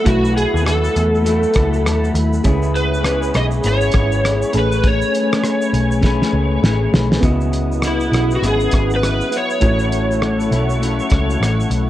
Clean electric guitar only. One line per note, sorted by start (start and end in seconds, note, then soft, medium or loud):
0.05 0.62 B2 medium
0.05 0.63 F#3 medium
0.05 0.65 A3 medium
0.05 0.66 E4 medium
0.63 1.22 B2 medium
0.63 1.24 F#3 medium
0.63 1.26 A3 medium
0.63 1.28 E4 medium
1.23 2.44 B2 medium
1.23 2.45 F#3 medium
1.27 2.45 A3 medium
1.27 2.45 E4 medium
2.44 3.02 C#3 medium
2.44 3.04 B3 medium
2.44 3.05 E4 medium
2.44 3.06 G#4 medium
3.03 3.64 C#3 medium
3.03 3.65 B3 medium
3.03 3.66 E4 medium
3.03 3.67 G#4 medium
3.65 4.55 C#3 medium
3.65 4.56 B3 medium
3.65 4.54 E4 medium
3.65 4.52 G#4 medium
4.53 6.04 C#4 medium
4.53 6.05 G#4 medium
4.53 6.06 B4 medium
4.58 6.02 A3 medium
6.04 6.62 A3 medium
6.04 6.64 C#4 medium
6.04 6.66 G#4 medium
6.04 6.66 B4 medium
6.63 7.22 A3 medium
6.63 7.23 C#4 medium
6.63 7.25 G#4 medium
6.63 8.45 B4 medium
7.21 8.41 C#3 medium
7.21 8.42 F#3 medium
7.21 8.43 B3 medium
7.25 8.44 E4 medium
8.42 9.32 C#3 medium
8.42 9.33 F#3 medium
8.42 9.31 B3 medium
8.42 9.30 E4 medium
9.31 9.61 F#3 soft
9.31 9.62 B3 soft
9.31 9.61 E4 medium
9.60 10.51 A2 medium
9.60 10.54 F#3 medium
9.60 10.52 C#4 medium
9.60 10.51 E4 medium
10.51 10.79 F#3 soft
10.51 10.81 C#4 soft
10.51 10.81 E4 medium
10.78 11.90 A2 medium
10.78 11.90 F#3 medium
10.78 11.90 C#4 medium
10.84 11.90 E4 medium